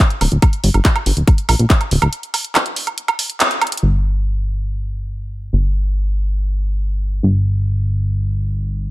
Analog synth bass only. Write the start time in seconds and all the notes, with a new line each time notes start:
0.21 D1
0.32 D1
0.64 G1
0.74 G1
1.06 G1
1.17 D1
1.49 A#1
1.59 A#1
1.91 D1
2.02 D1
3.83 G1
5.53 G1
7.23 G1